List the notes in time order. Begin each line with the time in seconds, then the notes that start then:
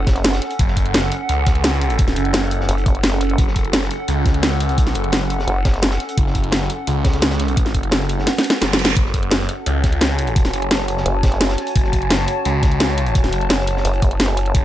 Already playing: F#1 C#4 A4 F#5
0.07 kick, snare, closed hi-hat
0.15 snare, closed hi-hat
0.24 snare, closed hi-hat
0.33 snare, closed hi-hat
0.42 snare, closed hi-hat
0.51 closed hi-hat
0.59 F#1, kick, closed hi-hat
0.68 snare
0.77 kick, closed hi-hat
0.86 closed hi-hat
0.94 snare, closed hi-hat
1.03 snare
1.12 closed hi-hat
1.29 C#2, closed hi-hat
1.47 kick, snare, closed hi-hat
1.55 closed hi-hat
1.64 snare, closed hi-hat
1.73 snare
1.81 closed hi-hat
1.90 closed hi-hat
1.98 kick, closed hi-hat
2.08 snare, closed hi-hat
2.16 F#1, closed hi-hat
2.25 closed hi-hat
2.33 snare, closed hi-hat
2.43 snare
2.51 closed hi-hat
2.61 snare
2.69 F#1, closed hi-hat
2.78 closed hi-hat
2.86 kick, closed hi-hat
2.95 closed hi-hat
3.03 snare, closed hi-hat
3.12 snare
3.21 closed hi-hat
3.30 closed hi-hat
3.38 F#1, kick, closed hi-hat
3.47 snare
3.56 kick, closed hi-hat
3.65 closed hi-hat
3.73 snare, closed hi-hat
3.82 snare
3.91 closed hi-hat
4.08 C#2, closed hi-hat
4.25 kick, snare, closed hi-hat
4.34 closed hi-hat
4.43 snare, closed hi-hat
4.51 snare
4.60 closed hi-hat
4.69 C2, closed hi-hat
4.78 kick, closed hi-hat
4.86 snare, closed hi-hat
4.94 F#1, closed hi-hat
5.04 closed hi-hat
5.12 snare, closed hi-hat
5.21 snare
5.30 closed hi-hat
5.39 snare
5.48 F#1, closed hi-hat
5.65 kick, snare, closed hi-hat
5.74 snare, closed hi-hat
5.82 snare, closed hi-hat
5.91 snare, closed hi-hat
6.00 snare, closed hi-hat
6.09 closed hi-hat
6.17 F#1, kick, closed hi-hat
6.27 snare
6.35 kick, closed hi-hat
6.44 closed hi-hat
6.52 snare, closed hi-hat
6.62 snare
6.70 closed hi-hat
6.87 C#2, closed hi-hat
7.04 kick, snare, closed hi-hat
7.13 snare, closed hi-hat
7.22 snare, closed hi-hat
7.30 snare, closed hi-hat
7.40 snare, closed hi-hat
7.48 closed hi-hat
7.57 kick, closed hi-hat
7.66 snare, closed hi-hat
7.74 F#1, kick, closed hi-hat
7.83 closed hi-hat
7.91 snare, closed hi-hat
8.00 snare
8.09 closed hi-hat
8.18 snare
8.27 snare, closed hi-hat, reverse cymbal
8.36 snare, closed hi-hat
8.44 closed hi-hat
8.50 snare, closed hi-hat
8.61 F#1, snare, closed hi-hat
8.71 snare
8.73 snare
8.79 closed hi-hat
8.85 snare
8.88 snare, closed hi-hat
8.96 F#1 F#4 C#5 G#5 A5, kick, closed hi-hat
9.06 snare
9.14 kick, closed hi-hat
9.23 closed hi-hat
9.31 snare, closed hi-hat
9.41 snare
9.49 closed hi-hat
9.66 C#2, closed hi-hat
9.83 kick, snare, closed hi-hat
9.93 closed hi-hat
10.01 snare, closed hi-hat
10.10 snare
10.18 closed hi-hat
10.27 closed hi-hat
10.36 kick, closed hi-hat
10.45 snare, closed hi-hat
10.54 F#1, closed hi-hat
10.62 closed hi-hat
10.71 snare, closed hi-hat
10.80 snare
10.88 closed hi-hat
10.97 snare
11.06 F#1, closed hi-hat
11.23 kick, snare, closed hi-hat
11.32 snare, closed hi-hat
11.41 snare, closed hi-hat
11.49 snare, closed hi-hat
11.58 snare, closed hi-hat
11.67 closed hi-hat
11.76 F#1, kick, closed hi-hat
11.84 snare
11.93 kick, closed hi-hat
12.02 closed hi-hat
12.10 snare, closed hi-hat
12.19 snare
12.27 closed hi-hat
12.45 C#2, closed hi-hat
12.63 kick, snare, closed hi-hat
12.72 closed hi-hat
12.80 snare, closed hi-hat
12.88 snare
12.98 closed hi-hat
13.06 closed hi-hat
13.15 kick, closed hi-hat
13.24 snare, closed hi-hat
13.33 F#1, closed hi-hat
13.41 closed hi-hat
13.50 snare, closed hi-hat
13.60 snare
13.67 closed hi-hat
13.77 snare
13.85 F#1, closed hi-hat
13.93 closed hi-hat
14.02 kick, closed hi-hat
14.11 closed hi-hat
14.20 snare, closed hi-hat
14.29 snare
14.37 closed hi-hat
14.46 closed hi-hat
14.55 F#1, kick, closed hi-hat